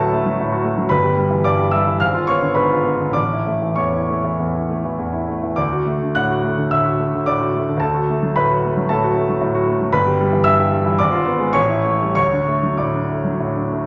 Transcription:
Already playing: D2 A2 F#3 A3 A4 B4 A5 B5
0.00 F#4
0.13 A3
0.26 F#3
0.41 A2
0.52 F#4
0.64 A3
0.78 F#3
0.89 G1 B4 B5
1.03 G4
1.17 G3
1.31 E3
1.44 G2 D5 D6
1.58 G4
1.71 G3 E5 E6
1.87 E3
2.00 G#1 F5 F6
2.14 F4
2.27 B3 C#5 C#6
2.42 D3
2.55 G#2 B4 B5
2.70 F4
2.84 B3
3.00 D3
3.11 A1 D5 D6
3.32 E4
3.47 A3
3.62 E3
3.76 E2 C#5 C#6
3.93 E4
4.10 A3
4.24 E3
4.40 E2
4.54 E4
4.70 A3
4.85 E3
4.99 E2
5.13 E4
5.29 A3
5.43 E3
5.56 D2 D5 D6
5.72 F#4
5.86 A3
6.02 D3
6.15 A2 F#5 F#6
6.30 F#4
6.44 A3
6.58 D3
6.71 A2 E5 E6
6.85 F#4
6.99 A3
7.15 D3
7.26 A2 D5 D6
7.41 F#4
7.55 A3
7.69 D3
7.77 D2 A5
7.81 A4
7.94 F#4
8.10 A3
8.23 F#3
8.36 A2 B4 B5
8.50 F#4
8.65 A3
8.77 F#3
8.89 A2 A4 A5
9.04 F#4
9.16 A3
9.29 F#3
9.41 A2
9.55 F#4
9.67 A3
9.81 F#3
9.92 G1 B4 B5
10.07 G4
10.20 G3
10.33 E3
10.44 G2 E5 E6
10.59 G4
10.72 G3
10.86 E3
10.98 G#1 D5 D6
11.11 F4
11.26 B3
11.39 G#3
11.53 A1 C#5 C#6
11.69 E4
11.85 A3
12.02 G3
12.15 D2 C#5 C#6
12.32 D4
12.47 A3
12.63 F#3
12.77 A2 D5 D6
12.94 D4
13.09 A3
13.25 F#3
13.40 A2
13.56 D4
13.72 A3

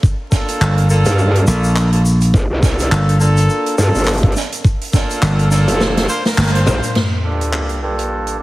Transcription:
0.03 kick, shaker
0.32 A#3 D4 F4 A4, kick, snare, shaker
0.48 closed hi-hat, shaker
0.61 G1, clap, shaker
0.78 closed hi-hat
0.90 A#3 D4 F4 A4, shaker
1.05 G2, closed hi-hat, shaker
1.19 shaker
1.35 closed hi-hat
1.47 A#1 A#3 D4 F4 A4, shaker
1.64 shaker
1.76 clap, closed hi-hat, shaker
1.92 A#3 D4 F4 A4, closed hi-hat
2.06 shaker
2.21 closed hi-hat, shaker
2.34 G1, kick, shaker
2.50 C2
2.63 A#3 D4 F4 A4, kick, snare, shaker
2.79 closed hi-hat, shaker
2.91 G1, clap, shaker
3.09 closed hi-hat
3.20 A#3 D4 F4 A4, shaker
3.37 closed hi-hat, shaker
3.49 shaker
3.66 closed hi-hat
3.78 G2 A#3 D4 F4 A4, shaker
3.94 G1, closed hi-hat, shaker
3.98 closed hi-hat
4.04 clap, closed hi-hat, shaker
4.08 closed hi-hat
4.13 closed hi-hat
4.17 closed hi-hat
4.23 A#3 D4 F4 A4, kick
4.32 closed hi-hat
4.36 snare, shaker
4.41 closed hi-hat
4.52 closed hi-hat, shaker
4.65 kick, shaker
4.81 closed hi-hat
4.84 closed hi-hat
4.88 closed hi-hat
4.90 closed hi-hat
4.92 A#3 D4 F4 A4, kick, snare, closed hi-hat, shaker
5.10 closed hi-hat, shaker
5.22 G1, clap, shaker
5.39 closed hi-hat
5.51 A#3 D4 F4 A4, snare, shaker
5.68 F1, closed hi-hat, shaker
5.80 snare, shaker
5.97 snare, closed hi-hat
6.09 A#3 D4 F4 C5, shaker
6.25 A#3 D4 F4 A#4, snare, closed hi-hat, shaker
6.28 closed hi-hat
6.33 closed hi-hat
6.37 G1, snare, clap, closed hi-hat, shaker
6.43 closed hi-hat
6.47 closed hi-hat
6.54 A#3 D4 F4 C5, closed hi-hat
6.66 A#1, mid tom, shaker
6.83 closed hi-hat, shaker
6.95 snare, crash, sub drop
7.24 G2 A#3 D4 F4 A4
7.41 closed hi-hat
7.53 clap
7.69 closed hi-hat
7.82 G2 A#3 D4 F4 A4
7.99 closed hi-hat
8.27 closed hi-hat

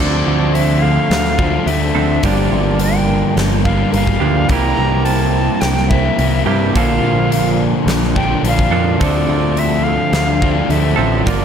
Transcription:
Already playing: D3 D5
0.00 D2 D3 F3 A3 C4 D4 A4
0.27 D2 F4
0.54 C4 E5, open hi-hat
0.81 A3 F5
1.10 D2 F4, snare, open hi-hat
1.25 snare
1.38 D3 F3 A3 C4 D4, kick
1.66 D2 D3 F3 A3 D4 E5, open hi-hat
1.95 D2 D3 F3 C4 D4 F4 A4
2.23 G1 G2 D3 F3 G3 A#3 D4 G4 D5, kick, open hi-hat
2.51 G1 F4
2.79 D4 G5, open hi-hat
3.07 A#3
3.37 G1 F4, snare, open hi-hat
3.64 D3 G3 A#3 D4 F5, kick
3.69 G2
3.92 G1 G2 D3 G3 A#3 F5, open hi-hat
3.96 D4
4.07 kick
4.20 D2 G2 D3 F3 A#3 D4 F4 G4
4.49 C2 C3 E3 G3 A#3 E4 G4 A#5, kick, open hi-hat
4.77 C2 G4
5.05 C4 A5, open hi-hat
5.34 A#3
5.61 C2 G4 G5, snare, open hi-hat
5.77 snare
5.89 C4 E4 E5, kick
5.93 C3 G3 A#3
6.18 C2 C3 G3 A#3 E4, open hi-hat
6.46 G2 C3 G3 A#3 E4 G4 E5
6.74 A#1 A#2 D3 F3 A#3 D4 A4 F5, kick, open hi-hat
6.78 D4
7.02 A#1 F4
7.32 D4, open hi-hat
7.86 A#1 F4, snare, open hi-hat
8.03 snare
8.15 A#2 D3 F3 A#3 D4 G5, kick
8.43 A#1 A#2 D3 F3 A#3, open hi-hat
8.47 D4 F5
8.59 kick
8.71 F2 A#2 D3 F3 A#3 D4 F4 A4
8.98 D2 D3 F3 C4 D4 A4 D5, kick, open hi-hat
9.03 F3 A3 D4
9.29 D2 F4
9.57 C4 E5, open hi-hat
9.84 A3 F5
10.12 D2 F4, snare, open hi-hat
10.42 D3 F3 A3 C4 D4, kick
10.69 D2 D3 F3 A3 E5, open hi-hat
10.73 D4
10.96 A1 D3 F3 C4 D4 F4 A4
11.25 G1 G2 D3 F3 G3 A#3 F4 D5, kick, open hi-hat
11.30 D4

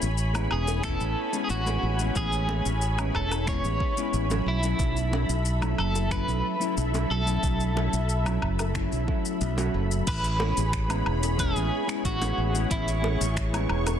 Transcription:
Already playing: C#5 G#5 B5
0.02 A1, shaker
0.18 shaker
0.34 G#3 B3 C#4 E4, low woodblock, shaker
0.51 E1 G#4, low woodblock
0.68 high bongo, shaker
0.83 A3 B3 C#4 E4 A4, finger snap, kick, shaker
1.00 A1, shaker
1.32 G#3 B3 C#4 E4, shaker
1.44 G#4
1.50 A1 F#4, shaker
1.65 G#3 B3 C#4 E4, high bongo, shaker
1.83 A1
1.99 G#3 B3 C#4 E4, shaker
2.16 A1 G#4, kick, shaker
2.33 shaker
2.48 G#3 B3 C#4 E4, high bongo
2.66 A1, shaker
2.82 shaker
2.97 G#3 B3 C#4 E4, low woodblock, shaker
3.14 E1 A4, kick, low woodblock
3.31 high bongo, low woodblock, shaker
3.46 G#3 B3 C#4 E4 C#5, finger snap, kick, shaker
3.64 A1, shaker
3.80 kick
3.97 G#3 B3 C#4 E4, shaker
4.14 A1, shaker
4.30 F#3 A3 C#4 E4, high bongo, shaker
4.46 B1 E4 A4 E5
4.62 F#3 A3 C#4 E4, shaker
4.79 B1, kick, shaker
4.97 shaker
5.11 F#3 A3 C#4 E4, high bongo
5.29 B1, shaker
5.45 shaker
5.61 F#3 A3 C#4 E4, low woodblock, shaker
5.78 F#1 A4, low woodblock
5.95 high bongo, shaker
6.10 F#3 A3 C#4 E4 B4, finger snap, kick, shaker
6.28 B1, shaker
6.59 F#3 A3 C#4 E4, shaker
6.77 B1, shaker
6.93 F#3 A3 C#4 E4, high bongo, shaker
7.10 B1 A4
7.25 F#3 A3 C#4 E4, shaker
7.43 B1, kick, shaker
7.60 shaker
7.75 F#3 A3 C#4 E4, high bongo
7.93 B1, shaker
8.09 shaker
8.25 F#3 A3 C#4 E4, low woodblock, shaker
8.42 F#1, kick, low woodblock
8.59 high bongo, low woodblock, shaker
8.74 F#3 A3 C#4 E4, finger snap, kick, shaker
8.92 B1, shaker
9.07 F#3 A3 C#4 E4, kick
9.25 shaker
9.41 B1, shaker
9.57 F#3 A3 C#4 F#4, high bongo, shaker
9.74 F#1
9.91 shaker
10.07 A1 G#4 B4 C#5 B5, kick, closed hi-hat, crash, shaker
10.24 closed hi-hat, shaker
10.39 G#3 B3 C#4 E4, high bongo
10.57 A1, closed hi-hat, shaker
10.73 finger snap, kick, closed hi-hat, shaker
10.88 G#3 B3 C#4 E4, closed hi-hat, low woodblock, shaker
11.06 E1, low woodblock
11.23 closed hi-hat, high bongo, shaker
11.37 G#3 B3 C#4 E4 G#4, kick, closed hi-hat, shaker
11.56 A1, shaker
11.87 G#3 B3 C#4 E4, finger snap, closed hi-hat, shaker
12.05 A1 F#4, kick, closed hi-hat, shaker
12.20 G#3 B3 C#4 E4, closed hi-hat, high bongo, shaker
12.38 A1
12.53 G#3 B3 C#4 E4, shaker
12.71 A1 E4 C#6, kick, closed hi-hat, shaker
12.88 closed hi-hat, shaker
13.02 G#3 B3 C#4 E4, high bongo
13.21 A1, closed hi-hat, shaker
13.37 finger snap, kick, closed hi-hat, shaker
13.53 G#3 B3 C#4 E4, closed hi-hat, low woodblock, shaker
13.69 E1, low woodblock
13.87 closed hi-hat, high bongo, low woodblock, shaker

